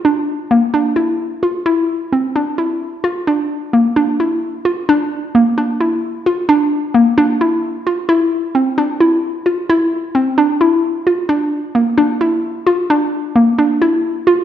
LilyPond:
\new Staff \with { instrumentName = "Synth pluck" } { \time 7/8 \key bes \lydian \tempo 4 = 131 d'4 bes8 d'8 e'4 f'8 | e'4 c'8 d'8 e'4 f'8 | d'4 bes8 d'8 e'4 f'8 | d'4 bes8 d'8 e'4 f'8 |
d'4 bes8 d'8 e'4 f'8 | e'4 c'8 d'8 e'4 f'8 | e'4 c'8 d'8 e'4 f'8 | d'4 bes8 d'8 e'4 f'8 |
d'4 bes8 d'8 e'4 f'8 | }